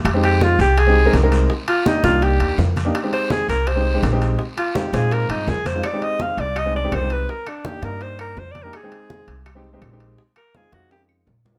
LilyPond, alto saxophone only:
\new Staff \with { instrumentName = "Alto saxophone" } { \time 4/4 \key f \dorian \tempo 4 = 166 r8 g'8 f'8 g'8 aes'4 r4 | r8 f'8 ees'8 f'8 g'4 r4 | r8 c''8 aes'8 bes'8 c''4 r4 | r8 f'8 g'8 aes'8 bes'8 ees'8 aes'8 c''8 |
d''8 ees''8 f''8 d''8 ees''8 d''8 c''8 ces''8 | bes'8 d'8 g'8 bes'8 c''8 bes'8 \tuplet 3/2 { c''8 d''8 bes'8 } | aes'2 r2 | r8 bes'8 aes'8 ges'8 g'8 r4. | }